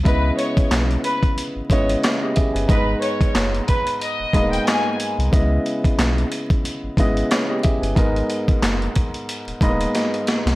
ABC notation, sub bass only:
X:1
M:4/4
L:1/16
Q:"Swing 16ths" 1/4=91
K:C#dor
V:1 name="Sub bass" clef=bass
C,,2 z2 B,,,2 z3 G,,, G,,,2 z3 =G,,, | G,,,2 z2 F,,,2 z3 D,,, D,,,2 z3 ^B,,, | C,,2 z2 B,,,2 z3 G,,, G,,,2 z3 =G,,, | G,,,2 z2 F,,,2 z3 D,,, D,,,2 z3 ^B,,, |]